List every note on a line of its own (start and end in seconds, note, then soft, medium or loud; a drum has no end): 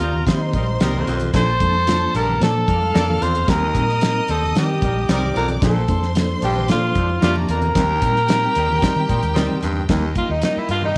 0.00 0.22 D#2 medium
0.00 0.12 G3 medium
0.00 0.12 D#4 medium
0.00 0.26 F4 medium
0.00 0.25 A#4 medium
0.00 0.12 C5 medium
0.00 0.25 A#5 medium
0.00 closed hi-hat medium
0.13 low conga medium
0.26 0.55 D#3 medium
0.26 0.55 D#3 loud
0.26 0.38 G3 medium
0.26 0.55 A#3 medium
0.26 0.55 C4 medium
0.26 0.38 D#4 medium
0.26 1.03 D#4 medium
0.26 0.56 G4 medium
0.26 1.32 C5 medium
0.26 0.38 C5 medium
0.26 1.32 C6 medium
0.26 kick medium
0.26 snare loud
0.26 closed hi-hat medium
0.26 muted conga soft
0.40 muted conga soft
0.53 0.76 A#1 medium
0.53 0.65 G3 medium
0.53 0.66 D#4 medium
0.53 0.65 A#4 medium
0.53 kick medium
0.53 closed hi-hat medium
0.53 high conga medium
0.67 high conga medium
0.80 1.03 C2 medium
0.80 1.09 D#3 medium
0.80 1.19 G3 medium
0.80 1.09 A#3 medium
0.80 1.10 C4 medium
0.80 1.19 D#4 medium
0.80 1.10 G4 medium
0.80 1.19 A#4 loud
0.80 snare loud
0.80 closed hi-hat medium
0.95 muted conga soft
0.95 low conga medium
1.07 1.30 B1 medium
1.07 1.28 F2 medium
1.07 closed hi-hat medium
1.20 closed hi-hat soft
1.20 low conga medium
1.33 1.56 A#1 loud
1.33 1.55 A#2 medium
1.33 1.48 F3 loud
1.33 1.48 A#3 medium
1.33 1.48 D4 medium
1.33 2.65 A4 medium
1.33 1.49 A4 loud
1.33 2.11 C5 loud
1.33 2.65 A5 medium
1.33 kick loud
1.33 snare loud
1.33 closed hi-hat loud
1.48 muted conga soft
1.60 2.06 F2 medium
1.60 1.75 F3 medium
1.60 1.75 A#3 medium
1.60 1.75 D4 medium
1.60 1.75 A4 medium
1.60 kick medium
1.60 closed hi-hat medium
1.60 high conga medium
1.87 2.16 F3 medium
1.87 2.16 A#3 medium
1.87 2.16 D4 medium
1.87 2.16 F4 medium
1.87 snare loud
1.87 closed hi-hat loud
2.02 muted conga soft
2.14 2.37 A#1 medium
2.14 2.35 G2 medium
2.14 2.26 A#3 medium
2.14 2.26 A4 medium
2.14 2.40 A#4 loud
2.14 2.26 D5 medium
2.14 closed hi-hat medium
2.28 low conga medium
2.40 2.63 A#2 loud
2.40 2.70 F3 medium
2.40 2.70 A#3 medium
2.40 2.53 A#3 medium
2.40 2.70 D4 medium
2.40 2.52 A4 medium
2.40 3.24 A4 loud
2.40 2.70 C5 medium
2.40 2.53 D5 medium
2.40 snare loud
2.40 closed hi-hat medium
2.55 muted conga soft
2.67 2.90 F2 medium
2.67 2.79 A#3 medium
2.67 2.79 A4 medium
2.67 2.79 D5 medium
2.67 3.46 F5 medium
2.67 3.46 F6 medium
2.67 kick medium
2.67 closed hi-hat medium
2.67 high conga medium
2.82 high conga medium
2.94 3.17 F2 medium
2.94 3.24 F3 medium
2.94 3.33 A#3 medium
2.94 3.24 A#3 medium
2.94 3.24 D4 medium
2.94 3.33 A4 medium
2.94 3.24 A4 medium
2.94 3.33 D5 loud
2.94 snare loud
2.94 closed hi-hat medium
2.94 muted conga soft
3.09 muted conga soft
3.09 low conga medium
3.21 3.44 E2 medium
3.21 3.43 F2 medium
3.21 3.51 C5 loud
3.21 closed hi-hat medium
3.35 closed hi-hat medium
3.35 low conga medium
3.48 3.71 D#2 loud
3.48 3.86 D#2 medium
3.48 3.62 G3 medium
3.48 3.62 C4 medium
3.48 3.63 D#4 medium
3.48 3.63 A#4 loud
3.48 4.32 A#4 loud
3.48 5.05 D#5 medium
3.48 5.05 D#6 medium
3.48 kick loud
3.48 snare loud
3.48 closed hi-hat loud
3.48 muted conga soft
3.63 muted conga soft
3.75 4.20 A#2 loud
3.75 3.89 G3 medium
3.75 3.90 C4 medium
3.75 3.90 D#4 medium
3.75 3.90 A#4 medium
3.75 kick medium
3.75 closed hi-hat medium
3.75 high conga medium
3.89 snare soft
4.01 4.30 G3 medium
4.01 4.30 C4 medium
4.01 4.31 D#4 medium
4.01 4.31 A#4 medium
4.01 snare loud
4.01 closed hi-hat loud
4.01 muted conga soft
4.28 4.51 D#2 medium
4.28 4.40 G3 medium
4.28 4.40 D#4 medium
4.28 4.56 A4 loud
4.28 4.40 C5 medium
4.28 closed hi-hat medium
4.42 low conga medium
4.55 4.78 D#3 loud
4.55 4.66 G3 medium
4.55 4.84 G3 medium
4.55 4.84 C4 medium
4.55 4.67 D#4 medium
4.55 4.84 D#4 medium
4.55 5.33 G4 medium
4.55 4.66 A#4 medium
4.55 4.85 A#4 medium
4.55 snare loud
4.55 closed hi-hat medium
4.55 muted conga soft
4.69 muted conga soft
4.82 5.04 A#1 medium
4.82 4.94 G3 medium
4.82 4.94 D#4 medium
4.82 4.94 A#4 medium
4.82 kick medium
4.82 closed hi-hat medium
4.82 high conga medium
4.96 high conga medium
5.08 5.31 C2 loud
5.08 5.37 G3 medium
5.08 5.47 G3 medium
5.08 5.37 C4 medium
5.08 5.37 D#4 medium
5.08 5.47 D#4 medium
5.08 5.47 A#4 loud
5.08 5.38 C5 medium
5.08 5.61 D5 medium
5.08 5.61 D6 medium
5.08 snare loud
5.08 closed hi-hat medium
5.08 muted conga soft
5.22 low conga medium
5.35 5.58 B1 medium
5.35 5.57 F2 medium
5.35 5.48 A#4 medium
5.35 closed hi-hat medium
5.48 closed hi-hat medium
5.48 low conga medium
5.61 5.85 A#1 loud
5.61 5.84 A#2 medium
5.61 5.76 F3 loud
5.61 5.76 A#3 medium
5.61 5.76 D4 medium
5.61 5.76 A4 loud
5.61 6.13 A4 medium
5.61 7.19 C5 medium
5.61 7.19 C6 loud
5.61 kick loud
5.61 snare loud
5.61 closed hi-hat loud
5.61 muted conga soft
5.75 muted conga soft
5.88 6.34 F2 medium
5.88 6.03 F3 medium
5.88 6.03 A#3 medium
5.88 6.03 D4 medium
5.88 6.03 C5 medium
5.88 kick medium
5.88 closed hi-hat medium
5.88 high conga medium
6.03 snare soft
6.15 6.44 F3 medium
6.15 6.44 A#3 medium
6.15 6.44 D4 medium
6.15 6.44 A4 medium
6.15 snare loud
6.15 closed hi-hat loud
6.15 muted conga soft
6.29 muted conga soft
6.42 6.70 A#1 loud
6.42 6.64 G2 medium
6.42 6.54 F3 medium
6.42 6.53 D4 medium
6.42 6.68 G4 medium
6.42 6.53 A4 medium
6.42 closed hi-hat medium
6.55 low conga medium
6.68 6.91 A#2 loud
6.68 6.97 F3 medium
6.68 6.81 F3 medium
6.68 6.97 A#3 medium
6.68 6.98 D4 medium
6.68 6.81 D4 medium
6.68 7.19 F4 medium
6.68 6.98 A4 medium
6.68 6.80 A4 medium
6.68 snare loud
6.68 closed hi-hat medium
6.68 muted conga soft
6.82 muted conga soft
6.95 7.18 F2 medium
6.95 7.07 F3 medium
6.95 7.07 D4 medium
6.95 7.07 A4 medium
6.95 kick medium
6.95 closed hi-hat medium
6.95 high conga medium
7.09 high conga medium
7.21 7.45 F2 medium
7.21 7.50 F3 medium
7.21 7.60 A3 loud
7.21 7.74 A#3 medium
7.21 7.51 A#3 medium
7.21 7.60 A#3 medium
7.21 7.51 D4 medium
7.21 7.35 F4 medium
7.21 7.51 G4 medium
7.21 7.60 D5 loud
7.21 7.74 A#5 medium
7.21 snare loud
7.21 closed hi-hat medium
7.36 muted conga soft
7.36 low conga medium
7.49 7.71 E2 medium
7.49 7.70 F2 medium
7.49 9.59 A#4 loud
7.49 closed hi-hat medium
7.62 closed hi-hat soft
7.62 low conga medium
7.75 7.98 D#2 loud
7.75 8.13 D#2 medium
7.75 7.89 G3 medium
7.75 7.90 C4 medium
7.75 7.90 D#4 medium
7.75 9.85 G4 medium
7.75 7.90 A#4 loud
7.75 9.85 G5 medium
7.75 kick loud
7.75 snare loud
7.75 closed hi-hat loud
7.89 muted conga soft
8.02 8.47 A#2 medium
8.02 8.16 G3 medium
8.02 8.17 C4 medium
8.02 8.17 D#4 medium
8.02 8.17 A#4 medium
8.02 kick medium
8.02 closed hi-hat medium
8.02 high conga medium
8.16 snare soft
8.28 8.57 G3 medium
8.28 8.58 C4 medium
8.28 8.58 D#4 medium
8.28 8.58 A#4 loud
8.28 snare loud
8.28 closed hi-hat loud
8.55 8.78 D#2 loud
8.55 8.67 G3 medium
8.55 8.68 D#4 medium
8.55 8.67 C5 medium
8.55 closed hi-hat medium
8.69 low conga medium
8.82 8.93 G3 medium
8.82 9.11 G3 medium
8.82 9.11 C4 medium
8.82 8.94 D#4 medium
8.82 9.11 D#4 medium
8.82 9.11 A#4 medium
8.82 8.93 C5 medium
8.82 kick medium
8.82 snare loud
8.82 closed hi-hat medium
8.82 muted conga soft
8.96 9.07 D#3 medium
8.96 muted conga soft
9.08 9.21 A#2 medium
9.08 9.20 G3 medium
9.08 9.20 D#4 medium
9.08 9.20 C5 medium
9.08 kick medium
9.08 closed hi-hat medium
9.08 high conga medium
9.22 9.34 D#2 medium
9.22 closed hi-hat soft
9.22 high conga medium
9.34 9.47 D2 medium
9.34 9.73 G3 loud
9.34 9.65 G3 medium
9.34 9.65 C4 medium
9.34 9.73 D#4 medium
9.34 9.65 D#4 medium
9.34 9.65 A#4 loud
9.34 9.73 C5 loud
9.34 snare loud
9.34 closed hi-hat medium
9.34 muted conga soft
9.49 low conga medium
9.62 9.85 E2 medium
9.62 9.84 G2 medium
9.62 closed hi-hat medium
9.76 low conga medium
9.89 10.12 D#2 loud
9.89 10.11 D#2 medium
9.89 10.04 G3 loud
9.89 10.04 A#3 loud
9.89 10.98 A#3 medium
9.89 10.04 D#4 medium
9.89 10.98 G4 medium
9.89 10.04 A#4 loud
9.89 10.98 D#5 medium
9.89 kick loud
9.89 snare loud
9.89 closed hi-hat medium
9.89 muted conga soft
10.03 muted conga soft
10.15 10.30 G3 medium
10.15 10.30 A#3 medium
10.15 10.30 D#4 medium
10.15 10.31 F4 medium
10.15 10.32 F4 medium
10.15 kick medium
10.15 closed hi-hat medium
10.15 high conga medium
10.29 10.41 D#2 medium
10.29 10.43 D#4 medium
10.42 10.71 G3 medium
10.42 10.72 A#3 medium
10.42 10.72 D#4 medium
10.42 10.60 D#4 loud
10.42 10.72 A#4 medium
10.42 snare loud
10.42 closed hi-hat medium
10.57 10.70 E4 medium
10.57 muted fingered electric bass stroke soft
10.69 10.91 G2 medium
10.69 10.82 F4 loud
10.69 closed hi-hat medium
10.82 10.98 D#4 medium
10.82 low conga medium